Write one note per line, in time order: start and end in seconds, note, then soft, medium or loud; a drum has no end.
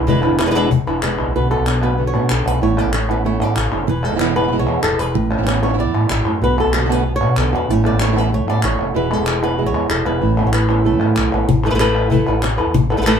0.07 0.29 E1 loud
0.07 0.38 B2 medium
0.07 0.39 D3 medium
0.07 0.22 E3 medium
0.07 0.23 G#3 medium
0.07 0.39 G#3 medium
0.07 0.39 B3 medium
0.07 0.23 D4 medium
0.07 0.23 E4 loud
0.07 0.38 E4 medium
0.07 0.21 B4 loud
0.07 cajon bass loud
0.22 0.39 D4 medium
0.22 0.39 E4 medium
0.22 0.38 B4 medium
0.31 0.80 E1 medium
0.39 0.71 G#3 soft
0.39 0.45 G#3 medium
0.39 0.71 B3 soft
0.39 0.43 D4 soft
0.39 0.70 E4 soft
0.39 0.42 E4 medium
0.39 0.42 B4 medium
0.39 cajon slap loud
0.39 clap medium
0.43 0.50 G#3 medium
0.43 0.50 D4 medium
0.43 0.46 B4 medium
0.47 0.54 G#3 medium
0.47 0.55 D4 medium
0.47 0.50 E4 medium
0.47 0.51 B4 medium
0.51 0.70 E3 medium
0.51 0.70 G#3 medium
0.51 0.55 E4 medium
0.51 0.55 B4 medium
0.51 clap soft
0.56 0.70 D4 loud
0.56 0.71 E4 medium
0.56 0.71 B4 loud
0.71 muted nylon-string guitar stroke medium
0.71 cajon bass loud
0.87 1.15 E1 medium
0.87 1.02 D4 soft
0.87 1.03 E4 medium
0.87 1.02 B4 medium
1.02 1.18 D3 soft
1.02 1.34 G#3 medium
1.02 1.18 G#3 soft
1.02 1.19 B3 medium
1.02 1.34 D4 medium
1.02 1.34 E4 medium
1.02 1.18 E4 soft
1.02 1.34 B4 medium
1.02 cajon slap loud
1.02 clap medium
1.19 1.26 B1 medium
1.19 1.35 G#3 soft
1.19 1.34 B3 soft
1.19 1.34 E4 soft
1.19 cajon slap soft
1.27 1.34 B1 medium
1.35 1.56 B1 loud
1.35 1.50 B2 medium
1.35 2.60 B2 medium
1.35 1.50 D3 medium
1.35 1.50 A3 medium
1.35 1.50 B3 medium
1.35 1.49 F#4 medium
1.35 1.51 B4 medium
1.50 1.66 A3 soft
1.50 1.97 B3 medium
1.50 1.66 B3 soft
1.50 1.66 F#4 soft
1.50 1.82 A4 medium
1.59 2.16 B1 medium
1.67 2.14 D4 soft
1.67 muted nylon-string guitar stroke medium
1.67 clap medium
1.82 1.98 A3 soft
1.82 1.98 B3 soft
1.82 1.97 F#4 soft
1.82 2.06 B4 medium
1.82 clap soft
1.98 2.13 B2 medium
1.98 2.13 D3 medium
1.98 2.14 A3 medium
1.98 2.64 B3 medium
1.98 2.13 B3 medium
1.98 2.12 F#4 medium
2.07 2.30 C#5 medium
2.14 2.28 B2 medium
2.14 2.29 A3 soft
2.14 2.29 B3 soft
2.14 2.60 D4 soft
2.14 2.29 F#4 soft
2.30 2.44 B1 medium
2.30 2.48 A4 medium
2.30 muted nylon-string guitar stroke medium
2.30 clap medium
2.46 2.60 B1 medium
2.46 2.62 A3 soft
2.46 2.61 B3 soft
2.46 2.61 F#4 soft
2.46 2.62 B4 medium
2.46 clap soft
2.61 2.82 A1 medium
2.61 3.56 A2 medium
2.61 2.77 E3 medium
2.61 2.77 B3 medium
2.61 2.77 C#4 medium
2.61 2.76 E4 medium
2.61 2.79 C#5 loud
2.77 3.24 A3 medium
2.77 2.93 B3 soft
2.77 2.93 C#4 soft
2.77 2.92 E4 soft
2.77 2.94 D5 medium
2.85 3.42 A1 medium
2.93 3.09 C#5 medium
2.93 muted nylon-string guitar stroke medium
2.93 clap medium
3.09 3.24 B3 soft
3.09 3.24 C#4 soft
3.09 3.24 E4 medium
3.09 3.26 B4 medium
3.09 clap soft
3.24 3.40 E3 medium
3.24 3.86 A3 medium
3.24 3.40 B3 medium
3.24 3.40 C#4 medium
3.24 3.39 E4 medium
3.24 3.41 C#5 medium
3.40 3.54 A2 medium
3.40 3.55 B3 soft
3.40 3.55 C#4 soft
3.40 3.56 E4 soft
3.40 3.58 D5 medium
3.56 3.70 A1 medium
3.56 3.72 C#3 medium
3.56 3.89 C#5 medium
3.56 muted nylon-string guitar stroke medium
3.56 clap medium
3.72 3.86 F#1 medium
3.72 3.87 D3 medium
3.72 3.88 B3 soft
3.72 3.88 C#4 soft
3.72 3.87 E4 soft
3.72 clap soft
3.87 4.09 E1 loud
3.87 5.13 E3 medium
3.87 4.05 B4 medium
3.87 muted nylon-string guitar stroke medium
4.04 4.51 G#3 medium
4.04 4.36 A4 medium
4.11 4.67 E1 medium
4.11 4.14 E3 soft
4.11 4.15 G#3 soft
4.11 4.15 B3 soft
4.11 4.16 E4 soft
4.15 4.19 E3 medium
4.15 4.20 G#3 medium
4.15 4.20 B3 medium
4.15 4.20 E4 medium
4.20 4.35 B2 medium
4.20 4.35 E3 medium
4.20 4.36 G#3 medium
4.20 4.36 B3 medium
4.20 4.35 E4 medium
4.20 clap medium
4.36 4.42 E3 soft
4.36 4.42 G#3 soft
4.36 4.39 B3 soft
4.36 4.42 B3 soft
4.36 4.38 E4 soft
4.36 4.43 E4 soft
4.36 4.59 B4 loud
4.36 clap medium
4.43 4.46 E3 medium
4.43 4.47 G#3 soft
4.43 4.47 B3 medium
4.43 4.47 E4 medium
4.47 4.51 E3 medium
4.47 4.51 G#3 medium
4.47 4.52 B3 medium
4.47 4.52 E4 medium
4.52 4.82 B2 medium
4.52 4.83 E3 medium
4.52 5.13 G#3 medium
4.52 4.83 G#3 medium
4.52 4.83 B3 medium
4.52 4.83 E4 medium
4.59 4.82 C#5 loud
4.67 4.81 E2 medium
4.67 5.13 E4 soft
4.83 4.97 E1 medium
4.83 4.99 A4 medium
4.83 muted nylon-string guitar stroke medium
4.83 clap medium
4.99 5.13 E1 medium
4.99 5.62 B4 medium
4.99 clap soft
5.14 5.36 A1 loud
5.14 6.25 A2 medium
5.14 muted nylon-string guitar stroke medium
5.30 5.78 C#4 medium
5.38 5.94 A1 medium
5.38 5.41 E3 soft
5.38 5.41 B3 medium
5.38 5.42 C#4 soft
5.38 5.42 E4 medium
5.42 5.45 E3 medium
5.42 5.46 B3 medium
5.42 5.46 C#4 medium
5.42 5.47 E4 medium
5.47 5.62 E3 medium
5.47 5.62 B3 medium
5.47 5.62 C#4 medium
5.47 5.93 E4 soft
5.47 5.61 E4 medium
5.47 clap medium
5.62 5.68 E3 soft
5.62 5.68 B3 soft
5.62 5.65 C#4 soft
5.62 5.68 C#4 soft
5.62 5.64 E4 soft
5.62 5.69 E4 soft
5.62 5.79 C#5 medium
5.62 clap soft
5.69 5.72 E3 soft
5.69 5.72 B3 medium
5.69 5.73 C#4 medium
5.69 5.73 E4 soft
5.73 5.76 E3 medium
5.73 5.77 B3 medium
5.73 5.80 C#4 medium
5.73 5.78 E4 medium
5.78 6.09 E3 medium
5.78 6.09 B3 medium
5.78 6.10 E4 medium
5.78 6.11 D5 medium
5.94 6.08 A2 medium
5.94 6.40 E4 soft
6.10 6.24 A1 medium
6.10 6.42 E5 loud
6.10 muted nylon-string guitar stroke medium
6.10 clap medium
6.25 6.40 F#2 medium
6.25 6.41 A2 medium
6.25 clap soft
6.42 6.63 B1 loud
6.42 7.66 B2 medium
6.42 6.57 B2 medium
6.42 6.57 D3 medium
6.42 6.57 A3 medium
6.42 6.58 B3 medium
6.42 6.57 F#4 medium
6.42 6.58 B4 loud
6.58 6.74 A3 soft
6.58 7.05 B3 medium
6.58 6.73 B3 soft
6.58 6.72 F#4 soft
6.58 6.75 A4 medium
6.65 7.22 B1 medium
6.73 6.79 D3 soft
6.73 6.80 A3 soft
6.73 6.80 B3 soft
6.73 6.76 F#4 soft
6.73 6.92 A4 medium
6.73 clap medium
6.77 6.83 D3 medium
6.77 6.84 A3 medium
6.77 6.80 F#4 soft
6.81 6.89 D3 medium
6.81 6.84 B3 medium
6.81 6.85 F#4 medium
6.85 7.04 B2 medium
6.85 6.89 A3 medium
6.85 6.89 B3 medium
6.85 6.89 F#4 medium
6.89 7.05 D3 medium
6.89 7.05 A3 medium
6.89 7.05 B3 medium
6.89 7.05 F#4 medium
6.89 7.14 B4 medium
6.89 clap soft
7.06 7.73 B3 medium
7.06 muted nylon-string guitar stroke medium
7.16 7.38 C#5 loud
7.21 7.35 B2 medium
7.21 7.36 A3 soft
7.21 7.37 B3 soft
7.21 7.67 D4 soft
7.21 7.36 F#4 soft
7.37 7.51 B1 loud
7.37 7.52 D3 soft
7.37 7.52 A3 soft
7.37 7.53 B3 soft
7.37 7.52 F#4 medium
7.37 7.54 A4 medium
7.37 clap medium
7.53 7.67 E2 medium
7.53 7.69 A3 soft
7.53 7.68 B3 soft
7.53 7.68 F#4 soft
7.53 7.70 B4 medium
7.53 clap soft
7.68 7.89 A1 loud
7.68 8.96 A2 medium
7.68 7.84 E3 medium
7.68 7.84 B3 medium
7.68 7.84 C#4 medium
7.68 7.83 E4 medium
7.68 7.85 C#5 loud
7.84 8.31 A3 medium
7.84 8.01 B3 soft
7.84 8.00 C#4 soft
7.84 7.99 E4 soft
7.84 8.01 D5 medium
7.92 8.48 A1 medium
8.00 8.07 B3 soft
8.00 8.07 C#4 soft
8.00 8.08 E4 soft
8.00 8.18 C#5 loud
8.00 clap medium
8.07 8.11 E3 soft
8.07 8.11 B3 soft
8.07 8.11 C#4 soft
8.07 8.12 E4 soft
8.12 8.15 E3 medium
8.12 8.16 B3 medium
8.12 8.16 C#4 medium
8.12 8.16 E4 medium
8.16 8.31 E3 medium
8.16 8.31 B3 medium
8.16 8.31 C#4 medium
8.16 8.32 E4 medium
8.16 8.33 B4 medium
8.16 clap medium
8.32 8.93 A3 medium
8.32 8.49 C#5 loud
8.32 muted nylon-string guitar stroke medium
8.47 8.62 A2 medium
8.47 8.63 B3 soft
8.47 8.63 C#4 soft
8.47 8.63 E4 soft
8.47 8.64 D5 loud
8.63 8.77 A1 loud
8.63 8.78 E3 soft
8.63 8.79 B3 soft
8.63 8.79 C#4 medium
8.63 8.78 E4 medium
8.63 8.96 C#5 loud
8.63 clap medium
8.79 8.93 F1 medium
8.79 8.95 B3 soft
8.79 8.95 C#4 soft
8.79 8.94 E4 soft
8.79 clap soft
8.94 9.16 E1 loud
8.94 9.10 B2 medium
8.94 11.79 E3 medium
8.94 9.10 E3 medium
8.94 9.10 G#3 medium
8.94 9.10 B3 medium
8.94 9.09 E4 medium
8.94 9.13 B4 medium
9.10 9.57 G#3 medium
9.10 9.26 B3 soft
9.10 9.26 E4 soft
9.10 9.43 A4 medium
9.19 9.74 E1 medium
9.26 9.74 E4 medium
9.26 muted nylon-string guitar stroke medium
9.26 clap medium
9.42 9.57 G#3 soft
9.42 9.58 B3 soft
9.42 9.58 E4 soft
9.42 9.66 B4 medium
9.42 clap medium
9.58 9.73 B2 medium
9.58 9.73 E3 medium
9.58 10.20 G#3 medium
9.58 9.74 G#3 medium
9.58 9.74 B3 medium
9.58 9.73 E4 medium
9.66 9.90 C#5 loud
9.74 9.88 E2 medium
9.74 9.89 G#3 soft
9.74 9.89 B3 soft
9.74 9.89 E4 soft
9.74 10.70 E4 soft
9.90 10.04 E1 loud
9.90 10.06 A4 medium
9.90 muted nylon-string guitar stroke medium
9.90 clap medium
10.06 10.20 E1 medium
10.06 10.22 G#3 soft
10.06 10.21 B3 soft
10.06 10.21 E4 soft
10.06 10.46 B4 medium
10.06 clap soft
10.21 10.43 A1 loud
10.21 11.47 A2 medium
10.21 10.37 E3 medium
10.21 10.37 B3 medium
10.21 10.37 C#4 medium
10.21 10.36 E4 medium
10.38 10.84 A3 medium
10.38 10.53 B3 soft
10.38 10.53 C#4 soft
10.38 10.53 E4 soft
10.45 11.01 A1 medium
10.45 10.53 C#5 medium
10.53 10.85 B4 medium
10.53 muted nylon-string guitar stroke medium
10.53 clap medium
10.69 10.84 B3 soft
10.69 10.85 C#4 soft
10.69 10.84 E4 soft
10.69 11.64 E4 soft
10.69 clap medium
10.85 11.00 E3 medium
10.85 11.46 A3 medium
10.85 11.01 B3 medium
10.85 11.01 C#4 medium
10.85 11.00 E4 medium
10.85 11.33 A4 medium
11.01 11.15 A2 medium
11.01 11.16 B3 soft
11.01 11.47 C#4 soft
11.01 11.17 C#4 soft
11.01 11.16 E4 soft
11.16 11.31 B1 medium
11.16 muted nylon-string guitar stroke medium
11.16 clap medium
11.32 11.47 A1 medium
11.32 11.49 B3 soft
11.32 11.48 C#4 soft
11.32 11.48 E4 soft
11.32 11.47 B4 soft
11.32 clap soft
11.49 11.69 A1 loud
11.49 muted nylon-string guitar stroke medium
11.49 cajon bass loud
11.64 11.69 A3 medium
11.64 11.68 E4 soft
11.64 11.67 A4 medium
11.64 11.66 B4 medium
11.64 11.70 B4 medium
11.70 12.21 A1 medium
11.70 11.74 A3 medium
11.70 11.74 E4 medium
11.70 11.74 A4 medium
11.70 11.74 B4 medium
11.75 11.79 A3 medium
11.75 11.79 E4 medium
11.75 11.79 A4 medium
11.75 11.79 B4 medium
11.79 12.09 E3 medium
11.79 12.10 A3 medium
11.79 12.10 E4 medium
11.79 12.11 A4 medium
11.79 12.11 B4 loud
11.79 cajon slap loud
11.79 clap medium
11.95 clap medium
12.10 12.26 E3 medium
12.10 12.26 A3 medium
12.10 12.27 E4 medium
12.10 12.27 A4 medium
12.10 12.26 B4 loud
12.10 cajon bass loud
12.27 12.55 A1 medium
12.27 12.43 E4 medium
12.27 12.42 A4 medium
12.27 12.42 B4 medium
12.42 muted nylon-string guitar stroke medium
12.42 cajon slap loud
12.42 clap medium
12.57 12.66 E2 medium
12.57 12.75 E4 soft
12.57 12.74 A4 medium
12.57 12.73 B4 medium
12.57 cajon slap soft
12.57 clap medium
12.67 12.74 E2 medium
12.74 12.96 A1 loud
12.74 muted nylon-string guitar stroke medium
12.74 cajon bass loud
12.90 12.97 E4 soft
12.90 12.97 A4 medium
12.90 12.97 B4 medium
12.97 13.20 A1 medium
12.97 13.00 A3 medium
12.97 13.01 E4 medium
12.97 13.01 A4 medium
12.97 13.02 B4 medium
13.02 13.06 A3 medium
13.02 13.06 E4 medium
13.02 13.06 A4 medium
13.02 13.06 B4 medium
13.06 13.20 E3 medium
13.06 13.20 A3 loud
13.06 13.20 E4 loud
13.06 13.20 A4 loud
13.06 13.20 B4 loud
13.06 cajon slap medium
13.06 clap loud